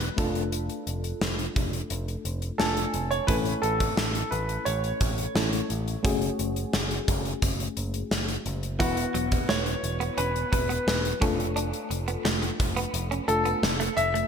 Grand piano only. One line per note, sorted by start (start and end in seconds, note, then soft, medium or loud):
0.00 0.14 B4 medium
2.58 3.07 A4 medium
3.11 3.29 C#5 medium
3.27 3.35 B4 medium
3.62 4.27 A4 medium
4.31 4.63 B4 medium
4.65 5.65 C#5 medium
8.79 9.51 F#4 medium
9.49 10.14 C#5 medium
10.18 10.51 B4 medium
10.52 11.17 B4 medium
13.28 13.99 A4 medium
13.97 14.28 E5 loud